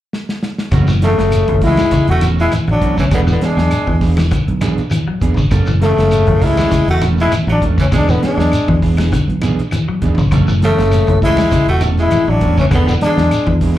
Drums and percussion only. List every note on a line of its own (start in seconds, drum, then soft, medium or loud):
0.13 snare medium
0.29 snare medium
0.43 snare medium
0.58 snare medium
0.72 kick loud
0.72 closed hi-hat medium
0.72 high conga soft
0.72 low conga medium
0.72 claves medium
0.72 shekere medium
0.87 snare soft
0.87 shekere medium
1.02 snare medium
1.02 closed hi-hat medium
1.18 snare medium
1.18 closed hi-hat soft
1.18 shekere soft
1.32 closed hi-hat medium
1.32 claves medium
1.32 shekere medium
1.48 kick medium
1.48 closed hi-hat soft
1.48 high conga medium
1.61 kick medium
1.61 open hi-hat medium
1.61 shekere soft
1.77 snare medium
1.77 closed hi-hat soft
1.77 high conga medium
1.77 low conga medium
1.77 claves medium
1.77 shekere medium
1.91 kick medium
1.91 snare soft
1.91 closed hi-hat medium
1.91 high conga soft
1.91 low conga medium
1.91 shekere medium
2.08 closed hi-hat soft
2.21 snare soft
2.21 closed hi-hat medium
2.21 high conga loud
2.21 claves medium
2.21 shekere medium
2.39 shekere soft
2.52 snare soft
2.52 closed hi-hat medium
2.52 high conga medium
2.52 claves medium
2.52 shekere medium
2.68 high conga medium
2.82 kick medium
2.82 closed hi-hat medium
2.82 shekere soft
2.98 kick medium
2.98 snare soft
2.98 shekere medium
3.11 kick loud
3.11 closed hi-hat medium
3.11 high conga soft
3.11 low conga medium
3.11 claves medium
3.11 shekere medium
3.27 shekere medium
3.41 snare medium
3.41 closed hi-hat medium
3.57 snare medium
3.57 shekere soft
3.71 closed hi-hat medium
3.71 high conga soft
3.71 claves medium
3.71 shekere medium
3.87 kick medium
3.87 high conga medium
4.01 kick medium
4.01 open hi-hat medium
4.01 shekere soft
4.17 snare medium
4.17 closed hi-hat soft
4.17 high conga medium
4.17 claves medium
4.17 shekere medium
4.31 kick medium
4.31 closed hi-hat medium
4.31 high conga soft
4.31 low conga medium
4.31 shekere medium
4.48 closed hi-hat soft
4.61 snare soft
4.61 closed hi-hat soft
4.61 high conga loud
4.61 claves medium
4.61 shekere medium
4.78 closed hi-hat soft
4.78 shekere soft
4.91 closed hi-hat medium
4.91 high conga medium
4.91 claves medium
4.91 shekere medium
5.21 kick medium
5.21 closed hi-hat medium
5.21 shekere soft
5.37 kick medium
5.37 shekere medium
5.51 kick medium
5.51 closed hi-hat medium
5.51 high conga soft
5.51 low conga medium
5.51 claves medium
5.51 shekere medium
5.66 shekere medium
5.82 snare medium
5.82 closed hi-hat medium
5.97 snare medium
5.97 closed hi-hat soft
5.97 shekere soft
6.11 closed hi-hat medium
6.11 high conga soft
6.11 claves medium
6.11 shekere medium
6.27 kick medium
6.27 closed hi-hat soft
6.27 high conga medium
6.42 kick medium
6.42 open hi-hat medium
6.42 shekere soft
6.57 snare medium
6.57 closed hi-hat soft
6.57 high conga medium
6.57 low conga medium
6.57 claves medium
6.57 shekere medium
6.71 kick medium
6.71 snare soft
6.71 closed hi-hat medium
6.71 high conga soft
6.71 low conga medium
6.71 shekere medium
6.88 closed hi-hat soft
7.01 snare soft
7.01 closed hi-hat soft
7.01 high conga loud
7.01 claves medium
7.01 shekere medium
7.18 shekere soft
7.32 snare soft
7.32 closed hi-hat medium
7.32 high conga medium
7.32 claves medium
7.32 shekere medium
7.48 snare soft
7.62 kick medium
7.62 closed hi-hat medium
7.62 shekere soft
7.78 kick medium
7.78 snare soft
7.78 shekere medium
7.92 kick medium
7.92 closed hi-hat medium
7.92 high conga soft
7.92 low conga medium
7.92 claves medium
7.92 shekere medium
8.09 shekere medium
8.23 snare medium
8.23 closed hi-hat medium
8.39 snare medium
8.39 shekere soft
8.52 closed hi-hat medium
8.52 claves medium
8.52 shekere medium
8.68 kick medium
8.68 high conga medium
8.82 kick medium
8.82 open hi-hat medium
8.82 shekere soft
8.97 snare medium
8.97 closed hi-hat soft
8.97 high conga medium
8.97 claves medium
8.97 shekere medium
9.12 kick medium
9.12 closed hi-hat medium
9.12 high conga soft
9.12 low conga medium
9.12 shekere medium
9.30 closed hi-hat soft
9.42 closed hi-hat soft
9.42 high conga loud
9.42 claves medium
9.42 shekere medium
9.59 closed hi-hat soft
9.59 shekere soft
9.71 closed hi-hat medium
9.71 high conga medium
9.71 claves medium
9.71 shekere medium
10.02 kick medium
10.02 closed hi-hat medium
10.02 high conga medium
10.02 shekere soft
10.18 kick medium
10.18 shekere medium
10.31 kick medium
10.31 closed hi-hat medium
10.31 high conga soft
10.31 low conga medium
10.31 claves medium
10.31 shekere medium
10.48 shekere medium
10.62 snare medium
10.62 closed hi-hat medium
10.78 snare medium
10.78 closed hi-hat soft
10.78 shekere soft
10.92 snare soft
10.92 closed hi-hat medium
10.92 high conga soft
10.92 claves medium
10.92 shekere medium
11.07 kick medium
11.07 closed hi-hat soft
11.07 high conga medium
11.22 kick medium
11.22 open hi-hat medium
11.22 shekere soft
11.37 snare medium
11.37 closed hi-hat soft
11.37 high conga medium
11.37 low conga medium
11.37 claves medium
11.37 shekere medium
11.51 kick medium
11.51 closed hi-hat medium
11.51 high conga soft
11.51 low conga medium
11.51 shekere medium
11.68 closed hi-hat soft
11.81 snare soft
11.81 closed hi-hat soft
11.81 high conga loud
11.81 claves medium
11.81 shekere medium
11.98 snare soft
11.98 shekere soft
12.11 closed hi-hat medium
12.11 high conga medium
12.11 claves medium
12.11 shekere medium
12.41 kick medium
12.41 closed hi-hat medium
12.41 shekere soft
12.57 kick medium
12.57 shekere medium
12.71 kick medium
12.71 closed hi-hat medium
12.71 high conga soft
12.71 low conga medium
12.71 claves medium
12.71 shekere medium
12.88 shekere medium
13.01 snare medium
13.01 closed hi-hat medium
13.18 snare medium
13.18 shekere soft
13.31 closed hi-hat medium
13.31 high conga soft
13.31 claves medium
13.31 shekere medium
13.47 kick medium
13.47 high conga medium
13.61 kick medium
13.61 open hi-hat medium
13.61 shekere soft